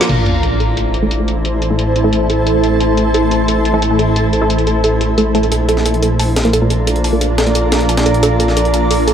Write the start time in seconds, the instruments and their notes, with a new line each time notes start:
Already playing: ambient pad D5
0.01 snare
0.09 detuned saw bass A1, synth drone A3 E4 A4, ambient pad E4, synth arpeggio sound A4, closed hi-hat, crash, sub drop
0.19 ambient pad C5
0.26 synth arpeggio sound A5, closed hi-hat
0.43 synth arpeggio sound A4, closed hi-hat
0.59 synth arpeggio sound A4, ambient pad A5, closed hi-hat
0.77 synth arpeggio sound A4, closed hi-hat
0.94 synth arpeggio sound A4, closed hi-hat
1.03 synth stab A3 E4 A4
1.11 synth arpeggio sound A5, closed hi-hat
1.19 synth stab A3 E4 A4
1.28 synth arpeggio sound A4, closed hi-hat
1.45 synth arpeggio sound A4, closed hi-hat
1.62 synth arpeggio sound A4, closed hi-hat
1.70 synth stab A3 E4 A4
1.79 synth arpeggio sound A4, closed hi-hat
1.96 synth arpeggio sound A5, closed hi-hat
2.04 synth stab A3 E4 A4
2.13 synth arpeggio sound A4, closed hi-hat
2.30 synth arpeggio sound A4, closed hi-hat
2.47 synth arpeggio sound A4, closed hi-hat
2.64 synth arpeggio sound A4, closed hi-hat
2.81 synth arpeggio sound A5, closed hi-hat
2.97 synth arpeggio sound A4, closed hi-hat
3.14 synth arpeggio sound A4, closed hi-hat
3.31 synth arpeggio sound A4, closed hi-hat
3.48 synth arpeggio sound A4, closed hi-hat
3.65 synth arpeggio sound A5, closed hi-hat
3.74 synth stab A3 E4 A4
3.82 synth arpeggio sound A4, closed hi-hat
3.91 synth stab A3 E4 A4
3.99 synth arpeggio sound A4, closed hi-hat
4.16 synth arpeggio sound A4, closed hi-hat
4.33 synth arpeggio sound A4, closed hi-hat
4.42 synth stab A3 E4 A4
4.50 synth arpeggio sound A5, closed hi-hat
4.58 closed hi-hat
4.67 synth arpeggio sound A4, closed hi-hat
4.84 synth arpeggio sound A4, closed hi-hat
5.01 synth arpeggio sound A4, closed hi-hat
5.18 synth stab A3 E4 A4, synth arpeggio sound A4, closed hi-hat
5.35 synth stab A3 E4 A4, synth arpeggio sound A5, closed hi-hat
5.43 closed hi-hat
5.52 detuned saw bass A#1, synth drone A#3 D4 F4, ambient pad F4, synth arpeggio sound A4, closed hi-hat
5.67 synth arpeggio sound A4, ambient pad D5, closed hi-hat
5.77 snare
5.86 synth arpeggio sound A4, ambient pad A#5, closed hi-hat
5.94 closed hi-hat
6.03 synth arpeggio sound A4, closed hi-hat
6.19 synth arpeggio sound A5, closed hi-hat, open hi-hat
6.36 synth arpeggio sound A4, snare, closed hi-hat
6.45 synth stab A#3 F4 A#4, closed hi-hat
6.53 synth arpeggio sound A4, closed hi-hat
6.62 synth stab A#3 F4 A#4
6.70 synth arpeggio sound A4, closed hi-hat
6.87 synth arpeggio sound A4, closed hi-hat
6.96 closed hi-hat
7.04 synth arpeggio sound A5, closed hi-hat, open hi-hat
7.13 synth stab A#3 F4 A#4
7.21 synth arpeggio sound A4, closed hi-hat
7.38 synth arpeggio sound A4, snare, closed hi-hat
7.47 synth stab A#3 F4 A#4, closed hi-hat
7.55 synth arpeggio sound A4, closed hi-hat
7.72 synth arpeggio sound A4, snare, closed hi-hat
7.81 closed hi-hat
7.89 synth arpeggio sound A5, closed hi-hat
7.97 snare, closed hi-hat
8.06 synth arpeggio sound A4, closed hi-hat
8.14 closed hi-hat
8.23 synth arpeggio sound A4, closed hi-hat
8.40 synth arpeggio sound A4, closed hi-hat
8.48 snare
8.57 synth arpeggio sound A4, closed hi-hat
8.65 closed hi-hat
8.74 synth arpeggio sound A5, closed hi-hat
8.91 synth arpeggio sound A4, closed hi-hat, open hi-hat
9.08 synth arpeggio sound A4, closed hi-hat